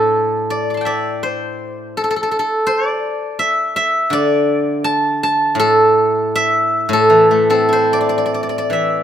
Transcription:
0, 0, Header, 1, 2, 480
1, 0, Start_track
1, 0, Tempo, 725514
1, 1774, Time_signature, 4, 2, 24, 8
1, 3698, Tempo, 757576
1, 4658, Tempo, 798935
1, 5816, End_track
2, 0, Start_track
2, 0, Title_t, "Guzheng"
2, 0, Program_c, 0, 107
2, 0, Note_on_c, 0, 45, 62
2, 0, Note_on_c, 0, 69, 77
2, 0, Note_on_c, 0, 72, 78
2, 333, Note_on_c, 0, 74, 82
2, 464, Note_on_c, 0, 86, 35
2, 490, Note_on_c, 0, 84, 39
2, 511, Note_on_c, 0, 81, 45
2, 536, Note_on_c, 0, 79, 47
2, 563, Note_on_c, 0, 76, 48
2, 568, Note_off_c, 0, 74, 0
2, 571, Note_on_c, 0, 74, 76
2, 676, Note_off_c, 0, 72, 0
2, 814, Note_on_c, 0, 72, 85
2, 1271, Note_off_c, 0, 86, 0
2, 1293, Note_off_c, 0, 69, 0
2, 1294, Note_off_c, 0, 45, 0
2, 1304, Note_on_c, 0, 69, 77
2, 1346, Note_off_c, 0, 69, 0
2, 1348, Note_on_c, 0, 69, 60
2, 1356, Note_off_c, 0, 84, 0
2, 1390, Note_off_c, 0, 69, 0
2, 1393, Note_on_c, 0, 69, 73
2, 1428, Note_off_c, 0, 69, 0
2, 1431, Note_on_c, 0, 69, 59
2, 1469, Note_off_c, 0, 81, 0
2, 1472, Note_off_c, 0, 69, 0
2, 1474, Note_on_c, 0, 69, 69
2, 1528, Note_off_c, 0, 69, 0
2, 1531, Note_on_c, 0, 69, 62
2, 1565, Note_off_c, 0, 79, 0
2, 1579, Note_off_c, 0, 69, 0
2, 1582, Note_on_c, 0, 69, 69
2, 1702, Note_off_c, 0, 76, 0
2, 1761, Note_off_c, 0, 74, 0
2, 1763, Note_off_c, 0, 72, 0
2, 1763, Note_on_c, 0, 72, 99
2, 1902, Note_off_c, 0, 72, 0
2, 1902, Note_on_c, 0, 74, 99
2, 2243, Note_on_c, 0, 76, 97
2, 2486, Note_off_c, 0, 76, 0
2, 2488, Note_on_c, 0, 76, 98
2, 2713, Note_on_c, 0, 50, 66
2, 2728, Note_off_c, 0, 74, 0
2, 2731, Note_on_c, 0, 74, 106
2, 3035, Note_off_c, 0, 69, 0
2, 3205, Note_on_c, 0, 81, 112
2, 3460, Note_off_c, 0, 81, 0
2, 3462, Note_on_c, 0, 81, 105
2, 3627, Note_off_c, 0, 76, 0
2, 3671, Note_on_c, 0, 45, 71
2, 3690, Note_off_c, 0, 50, 0
2, 3702, Note_on_c, 0, 69, 103
2, 3943, Note_off_c, 0, 74, 0
2, 4183, Note_on_c, 0, 76, 103
2, 4390, Note_off_c, 0, 81, 0
2, 4513, Note_off_c, 0, 45, 0
2, 4521, Note_on_c, 0, 45, 70
2, 4546, Note_off_c, 0, 69, 0
2, 4548, Note_on_c, 0, 69, 89
2, 4653, Note_on_c, 0, 52, 55
2, 4780, Note_on_c, 0, 57, 53
2, 4894, Note_on_c, 0, 60, 54
2, 4895, Note_off_c, 0, 69, 0
2, 4897, Note_on_c, 0, 69, 86
2, 5008, Note_on_c, 0, 64, 50
2, 5031, Note_on_c, 0, 72, 86
2, 5154, Note_on_c, 0, 74, 86
2, 5197, Note_off_c, 0, 74, 0
2, 5199, Note_on_c, 0, 74, 64
2, 5242, Note_off_c, 0, 76, 0
2, 5249, Note_off_c, 0, 74, 0
2, 5251, Note_on_c, 0, 74, 68
2, 5301, Note_off_c, 0, 74, 0
2, 5303, Note_on_c, 0, 74, 60
2, 5348, Note_off_c, 0, 74, 0
2, 5350, Note_on_c, 0, 74, 59
2, 5400, Note_off_c, 0, 74, 0
2, 5402, Note_on_c, 0, 74, 58
2, 5452, Note_off_c, 0, 74, 0
2, 5454, Note_on_c, 0, 74, 63
2, 5489, Note_off_c, 0, 74, 0
2, 5492, Note_on_c, 0, 74, 61
2, 5543, Note_off_c, 0, 74, 0
2, 5545, Note_on_c, 0, 74, 73
2, 5608, Note_off_c, 0, 52, 0
2, 5615, Note_on_c, 0, 52, 50
2, 5633, Note_on_c, 0, 76, 66
2, 5742, Note_off_c, 0, 57, 0
2, 5816, Note_off_c, 0, 45, 0
2, 5816, Note_off_c, 0, 52, 0
2, 5816, Note_off_c, 0, 60, 0
2, 5816, Note_off_c, 0, 64, 0
2, 5816, Note_off_c, 0, 69, 0
2, 5816, Note_off_c, 0, 72, 0
2, 5816, Note_off_c, 0, 74, 0
2, 5816, Note_off_c, 0, 76, 0
2, 5816, End_track
0, 0, End_of_file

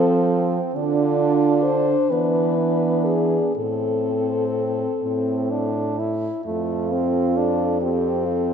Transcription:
0, 0, Header, 1, 5, 480
1, 0, Start_track
1, 0, Tempo, 890208
1, 400, Time_signature, 6, 3, 24, 8
1, 885, Tempo, 936037
1, 1365, Tempo, 983607
1, 2325, Tempo, 956938
1, 3285, Tempo, 895522
1, 4398, End_track
2, 0, Start_track
2, 0, Title_t, "French horn"
2, 0, Program_c, 0, 60
2, 0, Note_on_c, 0, 69, 78
2, 237, Note_off_c, 0, 69, 0
2, 401, Note_on_c, 0, 65, 62
2, 881, Note_on_c, 0, 72, 60
2, 889, Note_off_c, 0, 65, 0
2, 1118, Note_on_c, 0, 71, 53
2, 1126, Note_off_c, 0, 72, 0
2, 1596, Note_on_c, 0, 68, 51
2, 1603, Note_off_c, 0, 71, 0
2, 1836, Note_off_c, 0, 68, 0
2, 1839, Note_on_c, 0, 69, 52
2, 3028, Note_off_c, 0, 69, 0
2, 3290, Note_on_c, 0, 69, 44
2, 4398, Note_off_c, 0, 69, 0
2, 4398, End_track
3, 0, Start_track
3, 0, Title_t, "French horn"
3, 0, Program_c, 1, 60
3, 0, Note_on_c, 1, 60, 52
3, 407, Note_on_c, 1, 62, 58
3, 415, Note_off_c, 1, 60, 0
3, 1131, Note_on_c, 1, 59, 46
3, 1139, Note_off_c, 1, 62, 0
3, 1845, Note_off_c, 1, 59, 0
3, 1848, Note_on_c, 1, 60, 37
3, 2910, Note_off_c, 1, 60, 0
3, 3285, Note_on_c, 1, 65, 41
3, 3989, Note_off_c, 1, 65, 0
3, 4012, Note_on_c, 1, 67, 43
3, 4247, Note_on_c, 1, 65, 42
3, 4255, Note_off_c, 1, 67, 0
3, 4398, Note_off_c, 1, 65, 0
3, 4398, End_track
4, 0, Start_track
4, 0, Title_t, "French horn"
4, 0, Program_c, 2, 60
4, 0, Note_on_c, 2, 60, 41
4, 391, Note_off_c, 2, 60, 0
4, 638, Note_on_c, 2, 62, 39
4, 1113, Note_off_c, 2, 62, 0
4, 1127, Note_on_c, 2, 62, 32
4, 1362, Note_off_c, 2, 62, 0
4, 1365, Note_on_c, 2, 62, 33
4, 1832, Note_off_c, 2, 62, 0
4, 2085, Note_on_c, 2, 60, 32
4, 2507, Note_off_c, 2, 60, 0
4, 2567, Note_on_c, 2, 60, 37
4, 2809, Note_on_c, 2, 62, 34
4, 2816, Note_off_c, 2, 60, 0
4, 3050, Note_on_c, 2, 64, 37
4, 3058, Note_off_c, 2, 62, 0
4, 3278, Note_off_c, 2, 64, 0
4, 3281, Note_on_c, 2, 57, 41
4, 3529, Note_on_c, 2, 60, 46
4, 3537, Note_off_c, 2, 57, 0
4, 3773, Note_on_c, 2, 62, 43
4, 3781, Note_off_c, 2, 60, 0
4, 4008, Note_off_c, 2, 62, 0
4, 4012, Note_on_c, 2, 60, 43
4, 4398, Note_off_c, 2, 60, 0
4, 4398, End_track
5, 0, Start_track
5, 0, Title_t, "French horn"
5, 0, Program_c, 3, 60
5, 0, Note_on_c, 3, 53, 59
5, 318, Note_off_c, 3, 53, 0
5, 403, Note_on_c, 3, 50, 56
5, 1040, Note_off_c, 3, 50, 0
5, 1125, Note_on_c, 3, 52, 45
5, 1756, Note_off_c, 3, 52, 0
5, 1844, Note_on_c, 3, 45, 39
5, 2481, Note_off_c, 3, 45, 0
5, 2570, Note_on_c, 3, 45, 38
5, 3206, Note_off_c, 3, 45, 0
5, 3290, Note_on_c, 3, 41, 45
5, 4398, Note_off_c, 3, 41, 0
5, 4398, End_track
0, 0, End_of_file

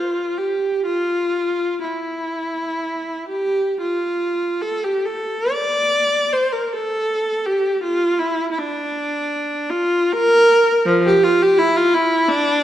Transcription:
0, 0, Header, 1, 2, 480
1, 0, Start_track
1, 0, Key_signature, -1, "major"
1, 0, Tempo, 950872
1, 435, Time_signature, 3, 2, 24, 8
1, 920, Tempo, 910470
1, 1400, Tempo, 1063830
1, 1880, Tempo, 817439
1, 2360, Tempo, 918836
1, 2840, Tempo, 805369
1, 3320, Tempo, 743494
1, 5240, Tempo, 828729
1, 5720, Tempo, 736196
1, 6200, Tempo, 694444
1, 7414, End_track
2, 0, Start_track
2, 0, Title_t, "Viola"
2, 0, Program_c, 0, 41
2, 0, Note_on_c, 0, 65, 71
2, 190, Note_on_c, 0, 67, 71
2, 194, Note_off_c, 0, 65, 0
2, 430, Note_on_c, 0, 65, 81
2, 435, Note_off_c, 0, 67, 0
2, 908, Note_off_c, 0, 65, 0
2, 928, Note_on_c, 0, 64, 62
2, 1646, Note_on_c, 0, 67, 77
2, 1651, Note_off_c, 0, 64, 0
2, 1863, Note_off_c, 0, 67, 0
2, 1885, Note_on_c, 0, 65, 72
2, 2360, Note_on_c, 0, 69, 85
2, 2362, Note_off_c, 0, 65, 0
2, 2472, Note_off_c, 0, 69, 0
2, 2478, Note_on_c, 0, 67, 76
2, 2590, Note_on_c, 0, 69, 82
2, 2597, Note_off_c, 0, 67, 0
2, 2834, Note_on_c, 0, 74, 104
2, 2838, Note_off_c, 0, 69, 0
2, 3311, Note_on_c, 0, 72, 89
2, 3317, Note_off_c, 0, 74, 0
2, 3435, Note_off_c, 0, 72, 0
2, 3438, Note_on_c, 0, 70, 77
2, 3560, Note_off_c, 0, 70, 0
2, 3571, Note_on_c, 0, 69, 90
2, 4043, Note_on_c, 0, 67, 87
2, 4046, Note_off_c, 0, 69, 0
2, 4280, Note_off_c, 0, 67, 0
2, 4283, Note_on_c, 0, 65, 90
2, 4516, Note_on_c, 0, 64, 86
2, 4520, Note_off_c, 0, 65, 0
2, 4716, Note_off_c, 0, 64, 0
2, 4724, Note_on_c, 0, 64, 64
2, 4769, Note_off_c, 0, 64, 0
2, 4769, Note_on_c, 0, 62, 86
2, 5464, Note_on_c, 0, 65, 101
2, 5471, Note_off_c, 0, 62, 0
2, 5714, Note_on_c, 0, 70, 127
2, 5716, Note_off_c, 0, 65, 0
2, 6187, Note_on_c, 0, 53, 99
2, 6197, Note_off_c, 0, 70, 0
2, 6310, Note_off_c, 0, 53, 0
2, 6324, Note_on_c, 0, 67, 96
2, 6437, Note_off_c, 0, 67, 0
2, 6446, Note_on_c, 0, 65, 104
2, 6559, Note_off_c, 0, 65, 0
2, 6577, Note_on_c, 0, 67, 103
2, 6684, Note_off_c, 0, 67, 0
2, 6688, Note_on_c, 0, 64, 112
2, 6799, Note_off_c, 0, 64, 0
2, 6813, Note_on_c, 0, 65, 106
2, 6922, Note_off_c, 0, 65, 0
2, 6932, Note_on_c, 0, 64, 104
2, 7165, Note_off_c, 0, 64, 0
2, 7176, Note_on_c, 0, 62, 114
2, 7411, Note_off_c, 0, 62, 0
2, 7414, End_track
0, 0, End_of_file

